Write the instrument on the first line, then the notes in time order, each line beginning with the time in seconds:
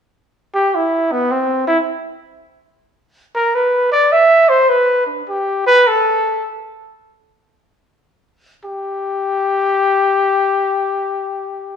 trumpet
0.54 G4
0.75 E4
1.12 B3
1.31 C4
1.68 E4
3.35 A#4
3.55 B4
3.92 D5
4.12 E5
4.49 C5
4.69 B4
5.06 D4
5.28 G4
5.66 B4
5.87 A4
8.65 G4